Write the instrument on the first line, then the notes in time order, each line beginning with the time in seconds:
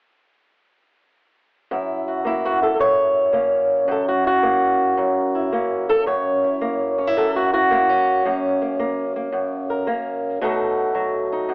steel-string acoustic guitar
1.71 F#2 E4
2.08 F#4
2.25 A#3 E4
2.45 F#4
2.62 E4 A4
2.79 F#2 C#5
3.33 A#3 C#4
3.88 F#2 A4
4.08 F#4
4.24 E4 F#4
4.43 A#3
4.97 F#2
5.35 E4
5.52 A#3 C#4
5.89 A4
6.06 F#2 C#5
6.44 E4
6.61 A#3
6.98 C#4
7.07 E4
7.17 F#2 A4
7.36 F#4
7.53 E4 F#4
7.71 A#3 E4
7.89 C#4
8.25 F#2 A#3
8.62 A#3
8.79 A#3
9.16 A#3
9.32 F#2
9.70 A#4
9.87 A#3 C#4
10.41 B2 F#3 A3 D#4 A4
10.95 F#3
11.32 D#4
11.49 F#2